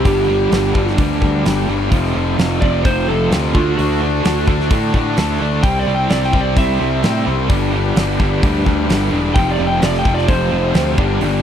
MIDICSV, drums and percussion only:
0, 0, Header, 1, 2, 480
1, 0, Start_track
1, 0, Tempo, 465116
1, 57, Time_signature, 4, 2, 24, 8
1, 11785, End_track
2, 0, Start_track
2, 0, Title_t, "Drums"
2, 55, Note_on_c, 9, 36, 102
2, 60, Note_on_c, 9, 46, 55
2, 158, Note_off_c, 9, 36, 0
2, 163, Note_off_c, 9, 46, 0
2, 535, Note_on_c, 9, 46, 54
2, 543, Note_on_c, 9, 38, 107
2, 638, Note_off_c, 9, 46, 0
2, 647, Note_off_c, 9, 38, 0
2, 774, Note_on_c, 9, 36, 85
2, 877, Note_off_c, 9, 36, 0
2, 902, Note_on_c, 9, 38, 30
2, 1005, Note_off_c, 9, 38, 0
2, 1011, Note_on_c, 9, 46, 53
2, 1015, Note_on_c, 9, 36, 106
2, 1114, Note_off_c, 9, 46, 0
2, 1118, Note_off_c, 9, 36, 0
2, 1256, Note_on_c, 9, 36, 80
2, 1360, Note_off_c, 9, 36, 0
2, 1501, Note_on_c, 9, 46, 51
2, 1510, Note_on_c, 9, 38, 105
2, 1604, Note_off_c, 9, 46, 0
2, 1613, Note_off_c, 9, 38, 0
2, 1979, Note_on_c, 9, 36, 97
2, 1981, Note_on_c, 9, 46, 50
2, 2083, Note_off_c, 9, 36, 0
2, 2085, Note_off_c, 9, 46, 0
2, 2464, Note_on_c, 9, 46, 49
2, 2472, Note_on_c, 9, 38, 103
2, 2567, Note_off_c, 9, 46, 0
2, 2575, Note_off_c, 9, 38, 0
2, 2703, Note_on_c, 9, 36, 87
2, 2806, Note_off_c, 9, 36, 0
2, 2941, Note_on_c, 9, 36, 108
2, 2946, Note_on_c, 9, 46, 50
2, 3045, Note_off_c, 9, 36, 0
2, 3049, Note_off_c, 9, 46, 0
2, 3423, Note_on_c, 9, 46, 53
2, 3432, Note_on_c, 9, 38, 107
2, 3526, Note_off_c, 9, 46, 0
2, 3535, Note_off_c, 9, 38, 0
2, 3662, Note_on_c, 9, 36, 97
2, 3765, Note_off_c, 9, 36, 0
2, 3909, Note_on_c, 9, 46, 54
2, 4012, Note_off_c, 9, 46, 0
2, 4384, Note_on_c, 9, 46, 62
2, 4392, Note_on_c, 9, 38, 116
2, 4487, Note_off_c, 9, 46, 0
2, 4495, Note_off_c, 9, 38, 0
2, 4618, Note_on_c, 9, 36, 89
2, 4721, Note_off_c, 9, 36, 0
2, 4747, Note_on_c, 9, 38, 31
2, 4851, Note_off_c, 9, 38, 0
2, 4856, Note_on_c, 9, 46, 55
2, 4858, Note_on_c, 9, 36, 110
2, 4959, Note_off_c, 9, 46, 0
2, 4961, Note_off_c, 9, 36, 0
2, 5097, Note_on_c, 9, 36, 76
2, 5200, Note_off_c, 9, 36, 0
2, 5336, Note_on_c, 9, 46, 54
2, 5344, Note_on_c, 9, 38, 107
2, 5439, Note_off_c, 9, 46, 0
2, 5447, Note_off_c, 9, 38, 0
2, 5815, Note_on_c, 9, 36, 110
2, 5816, Note_on_c, 9, 46, 52
2, 5919, Note_off_c, 9, 36, 0
2, 5920, Note_off_c, 9, 46, 0
2, 6293, Note_on_c, 9, 46, 52
2, 6301, Note_on_c, 9, 38, 105
2, 6396, Note_off_c, 9, 46, 0
2, 6404, Note_off_c, 9, 38, 0
2, 6430, Note_on_c, 9, 38, 36
2, 6533, Note_off_c, 9, 38, 0
2, 6536, Note_on_c, 9, 36, 82
2, 6639, Note_off_c, 9, 36, 0
2, 6776, Note_on_c, 9, 36, 105
2, 6778, Note_on_c, 9, 46, 50
2, 6879, Note_off_c, 9, 36, 0
2, 6881, Note_off_c, 9, 46, 0
2, 7257, Note_on_c, 9, 46, 52
2, 7266, Note_on_c, 9, 38, 105
2, 7361, Note_off_c, 9, 46, 0
2, 7369, Note_off_c, 9, 38, 0
2, 7736, Note_on_c, 9, 46, 54
2, 7737, Note_on_c, 9, 36, 106
2, 7839, Note_off_c, 9, 46, 0
2, 7840, Note_off_c, 9, 36, 0
2, 8219, Note_on_c, 9, 46, 55
2, 8227, Note_on_c, 9, 38, 117
2, 8322, Note_off_c, 9, 46, 0
2, 8331, Note_off_c, 9, 38, 0
2, 8460, Note_on_c, 9, 36, 88
2, 8563, Note_off_c, 9, 36, 0
2, 8701, Note_on_c, 9, 36, 108
2, 8709, Note_on_c, 9, 46, 57
2, 8804, Note_off_c, 9, 36, 0
2, 8812, Note_off_c, 9, 46, 0
2, 8941, Note_on_c, 9, 36, 77
2, 9044, Note_off_c, 9, 36, 0
2, 9181, Note_on_c, 9, 46, 56
2, 9189, Note_on_c, 9, 38, 102
2, 9284, Note_off_c, 9, 46, 0
2, 9292, Note_off_c, 9, 38, 0
2, 9655, Note_on_c, 9, 46, 51
2, 9656, Note_on_c, 9, 36, 114
2, 9759, Note_off_c, 9, 36, 0
2, 9759, Note_off_c, 9, 46, 0
2, 10135, Note_on_c, 9, 46, 57
2, 10143, Note_on_c, 9, 38, 109
2, 10238, Note_off_c, 9, 46, 0
2, 10246, Note_off_c, 9, 38, 0
2, 10264, Note_on_c, 9, 38, 34
2, 10367, Note_off_c, 9, 38, 0
2, 10375, Note_on_c, 9, 36, 89
2, 10478, Note_off_c, 9, 36, 0
2, 10505, Note_on_c, 9, 38, 31
2, 10609, Note_off_c, 9, 38, 0
2, 10614, Note_on_c, 9, 36, 109
2, 10616, Note_on_c, 9, 46, 49
2, 10717, Note_off_c, 9, 36, 0
2, 10719, Note_off_c, 9, 46, 0
2, 11088, Note_on_c, 9, 46, 55
2, 11096, Note_on_c, 9, 38, 100
2, 11191, Note_off_c, 9, 46, 0
2, 11199, Note_off_c, 9, 38, 0
2, 11332, Note_on_c, 9, 36, 109
2, 11435, Note_off_c, 9, 36, 0
2, 11570, Note_on_c, 9, 46, 55
2, 11673, Note_off_c, 9, 46, 0
2, 11785, End_track
0, 0, End_of_file